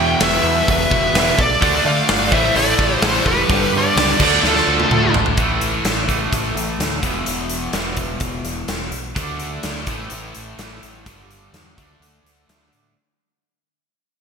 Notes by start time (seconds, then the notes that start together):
Already playing: E2 B2 E3 E5 G5
0.20 E1 E2 B2 E3 B4 E5, snare, open hi-hat
0.43 E2
0.68 E1 B4 E5, kick, open hi-hat
0.91 E1 E2 B2 E3, kick
1.14 E1 E2 B2 B4, snare, open hi-hat
1.18 E3 E5
1.37 B1 A4 D5, kick
1.61 D2 D3 A3 D4, kick, open hi-hat
1.85 D3 D5 F5
2.08 G1, snare, open hi-hat
2.30 A1 A2 E3 C5 E5, kick
2.34 A3
2.56 A1 A4 D5, open hi-hat
2.79 A1, kick
3.01 A1 A2 E3 A3 A4 C5, snare, open hi-hat
3.26 E1 G4 B4, kick
3.48 G1 G2 D3, kick, open hi-hat
3.53 G3
3.72 G2
3.77 G4 D5
3.96 C#2, snare, open hi-hat
4.19 D2 D3 A3 D4 D5, kick, crash
4.23 A4
4.43 D2, snare
4.47 F4 A4
4.55 snare
4.68 D2
4.80 high tom
4.89 D2 D3 A3 D4, mid tom
5.14 G#1, floor tom
5.26 floor tom
5.37 A1 A2 E3, kick, closed hi-hat
5.42 A3
5.61 closed hi-hat
5.84 A1, snare, closed hi-hat
6.08 A2 E3 A3, kick, closed hi-hat
6.33 A1, kick, closed hi-hat
6.55 A1, closed hi-hat
6.79 D2, snare, closed hi-hat
7.03 E1 E2 B2, kick, closed hi-hat
7.07 E3
7.26 E1, closed hi-hat
7.49 closed hi-hat
7.72 E1 E2 B2 E3, snare, closed hi-hat
7.97 kick, closed hi-hat
8.20 E1, kick, closed hi-hat
8.44 E1, snare, closed hi-hat
8.68 E1, snare, closed hi-hat
8.91 B1, closed hi-hat
9.15 D2 D3 A3 D4, kick, closed hi-hat
9.39 closed hi-hat
9.63 D2, snare, closed hi-hat
9.87 A1 A2 E3, kick, closed hi-hat
9.91 A3
10.10 A1, closed hi-hat
10.35 A1, closed hi-hat
10.57 A1 A2 E3, snare, closed hi-hat
10.61 A3
10.83 A1, closed hi-hat
11.05 G1 G2 D3 G3, kick, closed hi-hat
11.31 closed hi-hat
11.53 E2, snare, closed hi-hat
11.75 D2 D3 A3 D4, kick, closed hi-hat
12.00 D2, closed hi-hat
12.23 D2, snare, closed hi-hat
12.47 D2 D3 A3, snare, closed hi-hat
12.51 D4
12.73 A2, closed hi-hat